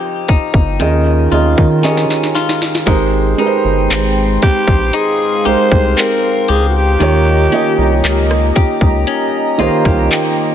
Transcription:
Already playing: F3 C4 D#4 G4 A#4 D#5
0.28 G1 D#4, kick, closed hi-hat
0.54 G1, kick
0.79 D#2 D#3 C#4 F4 G#4 D#5, closed hi-hat
1.31 D#2 D#3 C#4 F4 G#4 D#5, closed hi-hat
1.58 D#3, kick
1.82 D#3 C#4 F4 G4 D#5, snare, closed hi-hat
1.91 G#4
1.97 snare
2.10 snare
2.23 snare
2.35 F4, snare, closed hi-hat
2.49 snare
2.62 snare
2.75 snare
2.86 G#1 G#3 D#4 G4 A#4 C5 G5 C6, kick, closed hi-hat
3.37 G#3 D#4 G4 A#4 B4, closed hi-hat
3.46 C5
3.65 G1
3.90 G#1 C4, clap, closed hi-hat
4.42 G4, kick, closed hi-hat
4.68 A#1, kick
4.93 D#4 G#4 F5, closed hi-hat
5.45 C2 G#3 D#4 G4 A#4 C5, closed hi-hat
5.72 C2, kick
5.97 C4 A#4, clap, closed hi-hat
6.48 C#2 G4 G#4, closed hi-hat
6.69 F#4
6.76 G4
7.00 D#2 D#3 A#3 F4 G4 C#5 D#5 A#5, closed hi-hat
7.51 D#3 A#3 C#4 F4 G4 D#5, closed hi-hat
7.78 C2
8.04 C#2 A#3, clap, closed hi-hat
8.31 cross-stick
8.56 G4, kick, closed hi-hat
8.81 C#2, kick
9.07 C#4, closed hi-hat
9.58 C2 D#3 A#3 F4 G4 C5 D#5, closed hi-hat
9.85 C2 G4 F5, kick, cross-stick
10.11 A#3 G5, clap, closed hi-hat

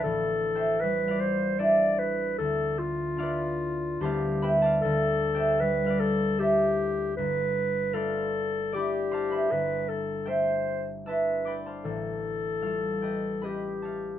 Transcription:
Already playing: D4 E4 A4 B4 D5 E5 F5 G5 A5
0.03 A1 A4
0.55 G4 C5 E5 G5
0.80 G3 B4
1.08 F4 B4 D5 F5
1.20 C5
1.59 D4 E4 A4 C5 D5 E5
1.99 B4
2.38 D2 A4
2.78 F4
3.17 D4 E4 F4 D5 F5
3.22 B4
4.00 D2 G3 A3 B3 E4 G4 C5 A5 C6
4.05 F5
4.42 B4 E5 G5 B5
4.62 A4 D5 A5
4.66 F5
4.81 D2 A4
5.35 G4 C5 E5 G5
5.60 G3 B4
5.84 F4 B4 F5
5.90 D5
6.00 A4
6.39 D4 E4 G4 A4 C5 E5
7.17 G1 B4
7.93 A3 F4 A4 B4 D5 F5
8.72 D4 E4 G4 D5 G5 B5 D6
9.12 C5 F5 A5 C6
9.30 B4 E5 B5
9.35 G5
9.51 G1 B4
9.89 A4
10.26 A3 G4 C5 E5 G5
11.06 D4 E4 B4 E5 A5 C6 E6
11.45 D5 G5 B5 D6
11.66 C5 F5 A5 C6
11.84 A1 A4
12.61 G3 F4 C#5 F5
12.66 A4
13.02 G4 B4 D#5 G5
13.42 C#4 F4 G4 B4 D#5 G5 B5
13.82 A4 C#5 F5 A5

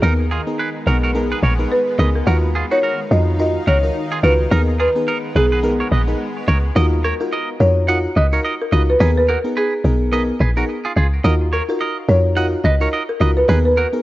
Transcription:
Already playing: G#4
0.02 D#2 G#3 B3 D#4 G#4 A#4
0.31 F4 G#4
0.47 B3 D#4 G#4 A#4
0.59 G#4 B4
0.86 B1 B3 D#4 F#4 G#4 A#4
1.04 F#4 A#4
1.15 B3 D#4 G#4 A#4
1.32 G#4 B4
1.43 A#1 A#4 C#5
1.59 B3 D#4 G#4 A#4
1.72 B4
1.98 C#2 B3 D#4 G#4 A#4 B4 D#5
2.16 A#4
2.26 D#2 D#3 D#4 F4 F#4 A#4 F5
2.55 F4 G#4
2.71 D#4 F4 F#4 A#4 C#5
2.83 F#4 A#4
3.11 F2 D#4 F4 F#4 A#4 D#5
3.39 D#4 F4 F#4 A#4 D#5
3.67 C#2 F#4 A#4 C#5
3.83 D#4 F4 F#4 A#4
4.12 F4 G#4
4.23 C#2 D#4 F4 F#4 A#4 B4
4.51 D#2 G#3 B3 D#4 G#4 A#4
4.80 F4 G#4 B4
4.95 B3 D#4 G#4 B4
5.08 D#4 A#4
5.35 B1 B3 D#4 G#4 A#4 B4
5.52 G#4 B4
5.63 B3 D#4 G#4 A#4
5.80 A#4 C#5
5.92 A#1 B4 D#5
6.07 B3 D#4 G#4 A#4
6.48 C#2 A#4 C#5
6.75 D#2 D#4 F4 F#4 A#4 D#5
7.04 A#4 C#5
7.20 D#4 F4 F#4 A#4
7.32 A#4 D#5
7.60 F2 D#4 F4 F#4 A#4 C#5
7.88 D#4 F4 F#4 A#4 D#5 F#5
8.16 C#2 B4 D#5
8.32 D#4 F4 F#4 A#4 C#5
8.44 A#4 D#5
8.62 A#4
8.72 C#2 D#4 F4 F#4 A#4 B4 D#5
8.90 B4
9.00 D#2 B3 D#4 G#4 A#4 B4
9.17 B4
9.28 F#4 A#4
9.44 B3 D#4 G#4 A#4
9.57 G#4 B4
9.84 B1 B3 D#4 G#4 A#4
10.12 B3 D#4 G#4 A#4 B4 D#5
10.40 A#1 G#4 B4
10.56 B3 D#4 F#4 G#4 A#4
10.85 F4 G#4
10.96 C#2 F4 G#4
11.24 D#2 D#4 F4 F#4 A#4 D#5
11.53 A#4 C#5
11.68 D#4 F4 F#4 A#4
11.81 A#4 D#5
12.08 F2 D#4 F4 F#4 A#4 C#5
12.36 D#4 F4 F#4 A#4 D#5 F#5
12.64 C#2 B4 D#5
12.80 D#4 F4 F#4 A#4 C#5
12.93 A#4 D#5
13.09 A#4
13.20 C#2 D#4 F4 F#4 A#4 B4 D#5
13.37 B4
13.48 D#2 B3 D#4 G#4 A#4 B4
13.65 B4
13.77 F#4 A#4
13.93 B3 D#4 G#4 A#4

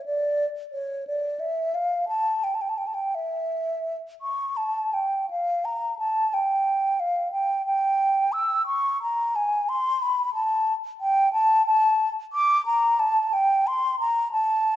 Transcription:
0.06 D5
0.72 C#5
1.07 D5
1.40 E5
1.75 F5
2.08 A5
2.44 G5
2.54 A5
2.61 G5
2.69 A5
2.78 G5
2.87 A5
2.94 G5
3.15 E5
4.21 C#6
4.57 A5
4.93 G5
5.30 F5
5.65 A#5
5.99 A5
6.34 G5
7.00 F5
7.32 G5
7.66 G5
8.33 E6
8.67 C#6
9.03 A#5
9.36 G#5
9.69 C6
10.02 B5
10.34 A5
11.01 G5
11.33 A5
11.66 A5
12.33 D6
12.66 A#5
12.99 A5
13.33 G5
13.67 C6
14.00 A#5
14.32 A5

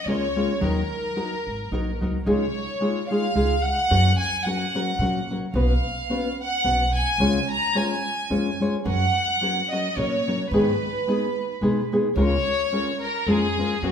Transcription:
0.06 C#2 G#3 C#4 F4 A#4 C#5
0.36 G#3 C#4 F4 A#4
0.61 D#2 D#3 F#3 D#4 F#4 A#4
1.16 F#3 D#4 F#4 A#4
1.47 G#1
1.72 A#1 F#3 D#4 F#4 A#4
2.01 C#2 F#3 D#4 F#4 A#4
2.26 C#2 C#3 G#3 D#4 F4 G#4 C#5
2.81 G#3 D#4 F4 G#4
3.09 G#3 D#4 F4 G#4 F5
3.35 C#2 G#3 D#4 F4 G#4
3.63 F#5
3.91 F#2 F#3 C#4 F#4 A#4
4.18 G#5
4.44 F#3 C#4 F#4 A#4 F#5
4.75 F#3 C#4 F#4 A#4
4.99 A#2 F#3 C#4 F#4 A#4
5.30 F#3 C#4 F#4 A#4
5.54 B1 B3 C#4 F#4 B4 F5
6.10 B3 C#4 F#4 B4
6.41 F#5
6.64 B1 B3 C#4 F#4 B4
6.97 G#5
7.18 C#2 C#3 G#3 C#4 F4 C#5
7.52 A#5
7.75 G#3 C#4 F4 C#5 G#5
8.30 F2 G#3 C#4 F4 C#5
8.60 G#3 C#4 F4 C#5
8.85 F#2 F#3 C#4 F#4 A#4 F#5
9.41 F#3 C#4 F#4 A#4
9.72 F#3 C#4 F#4 A#4 D#5
9.97 A#2 F#3 C#4 F#4 A#4 C#5
10.28 F#3 C#4 F#4 A#4
10.51 G#2 D#3 G#3 B3 D#4 G#4 B4
11.07 G#3 B3 D#4 G#4
11.61 B2 G#3 B3 D#4 G#4
11.92 G#3 B3 D#4 G#4
12.16 C#2 C#3 G#3 C#4 F4 A#4 C#5
12.72 G#3 C#4 F4 A#4
13.03 A#4
13.27 F2 G#3 C#4 F4 G#4 A#4
13.58 G#3 C#4 F4 A#4
13.82 F#2 F#3 C#4 F#4 A#4

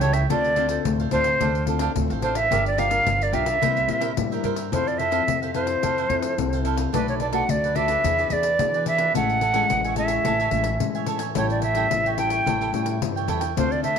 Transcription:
Already playing: C#2 E3 G3 C#4 E4
0.00 E4 A4 C#5 G5, pandeiro
0.13 A4 C#5 E5 G5, pandeiro
0.30 D2 D3 C4 D4 F4 A4 C5 D5 F5, pandeiro
0.44 pandeiro
0.56 C4 D4 F4 A4 C5 F5, pandeiro
0.69 C4 F4 A4 C5, pandeiro
0.85 D2 A2, pandeiro
1.00 A4 C5 F5, pandeiro
1.11 D2 C4 D4 F4 A4 C5 F5, pandeiro
1.24 A4 C5 F5, pandeiro
1.40 D2 D3 D4 A4 C5 F5, pandeiro
1.55 pandeiro
1.67 C4 D4 F4 A4 C5 F5, pandeiro
1.79 D4 A4 C5 F5, pandeiro
1.95 D2 A2 C4 F4 A4, pandeiro
2.10 A1 A4 C5 F5, pandeiro
2.22 D4 A4 C5 F5, pandeiro
2.35 A4 C5 E5 F5, pandeiro
2.51 G1 G3 D4 F4 G4 A#4 D5 F5, pandeiro
2.66 D5, pandeiro
2.78 D4 F4 G4 A#4 D5 F5, pandeiro
2.90 D4 F4 A#4 D5 F5, pandeiro
3.06 G1 D3, pandeiro
3.21 A#4 D5 F5, pandeiro
3.32 B1 D4 F4 G4 A#4 D5 E5 F5, pandeiro
3.46 A#4 D5 F5, pandeiro
3.61 C2 C3 G3 A#3 E4 A#4 C5 E5, pandeiro
3.77 pandeiro
3.87 A#2 G3 A#3 E4 A#4 C5 E5, pandeiro
4.00 E4 A#4 C5 E5, pandeiro
4.17 G2 A2 G3 A#3 E4, pandeiro
4.31 A#4 C5 E5, pandeiro
4.43 G2 E4 A#4 C5 E5, pandeiro
4.56 A#4 C5 E5, pandeiro
4.72 F2 F3 C4 E4 A4 C5 F5, pandeiro
4.88 D5, pandeiro
4.98 E4 A4 C5 E5 F5, pandeiro
5.11 C4 E4 A4 C5 F5, pandeiro
5.27 F2 C3, pandeiro
5.42 A4 C5 F5, pandeiro
5.54 C4 E4 A4 C5 F5, pandeiro
5.67 A4 C5 F5, pandeiro
5.82 F2 F3 E4 A4 C5 F5, pandeiro
5.98 E4 A4 C5 F5, pandeiro
6.09 F2 C4 E4 A4 C5 F5, pandeiro
6.22 pandeiro
6.38 C2 C3 C4 E4 A4, pandeiro
6.53 A4 C5 F5, pandeiro
6.65 E4 A4 C5 F5, pandeiro
6.77 A4 C5 F5, pandeiro
6.93 B1 B2 A3 D4 F#4 A4 B4 D5, pandeiro
7.08 C#5, pandeiro
7.20 D4 A4 B4 D5, pandeiro
7.32 A3 D4 F#4 A4 B4 D5 F#5, pandeiro
7.49 D2 F#2 D5, pandeiro
7.64 A4 B4 D5, pandeiro
7.75 A3 D4 F#4 A4 B4 D5 E5, pandeiro
7.88 A4 B4 D5, pandeiro
8.04 E2 E3 B3 D4 E4 G#4 B4 D5, pandeiro
8.18 E4 G#4 B4 D5, pandeiro
8.30 E2 B3 D4 G#4 B4 D5, pandeiro
8.43 pandeiro
8.59 B2 E3 B3 D4 G#4, pandeiro
8.74 G#4 B4 D5, pandeiro
8.86 E4 G#4 B4 D5 E5, pandeiro
8.98 G#4 B4 D5, pandeiro
9.14 A1 A2 G#3 C#4 E4 A4 C#5 E5 F#5 G#5, pandeiro
9.30 pandeiro
9.41 A4 C#5 E5 G#5, pandeiro
9.54 G#3 C#4 E4 A4 C#5 E5 G#5, pandeiro
9.70 A1 E3, pandeiro
9.84 C#5 E5 G#5, pandeiro
9.96 G#3 C#4 E4 A4 C#5 E5 G#5, pandeiro
10.08 C#5 E5 G#5, pandeiro
10.25 A1 A2 A4 C#5 E5 G#5, pandeiro
10.40 A4 C#5 E5 G#5, pandeiro
10.51 A1 G#3 C#4 E4 A4 C#5 E5 G#5, pandeiro
10.64 pandeiro
10.80 A2 E3 G#3 C#4 E4, pandeiro
10.95 C#5 E5 G#5, pandeiro
11.06 A4 C#5 E5 G#5, pandeiro
11.19 C#5 E5 G#5, pandeiro
11.35 A1 A2 G3 C#4 E4 A4 C#5 G5, pandeiro
11.50 D5, pandeiro
11.62 E4 A4 C#5 E5 G5, pandeiro
11.75 G3 C#4 E4 A4 C#5 G5, pandeiro
11.91 A1 E3, pandeiro
12.06 A4 C#5 G5, pandeiro
12.17 G3 C#4 E4 A4 C#5 G5, pandeiro
12.30 A4 C#5 G5, pandeiro
12.46 A1 A2 E4 A4 C#5 G5, pandeiro
12.61 E4 A4 C#5 G5, pandeiro
12.72 A2 G3 C#4 E4 A4 C#5 G5, pandeiro
12.86 pandeiro
13.02 G2 E3 G3 C#4 E4, pandeiro
13.16 A4 C#5 G5, pandeiro
13.28 E2 E4 A4 C#5 G5, pandeiro
13.40 A4 C#5 G5, pandeiro
13.57 D2 D3 A3 C4 D4 F4 A4 C5 F5, pandeiro
13.72 D5, pandeiro
13.83 D4 A4 C5 E5 F5, pandeiro

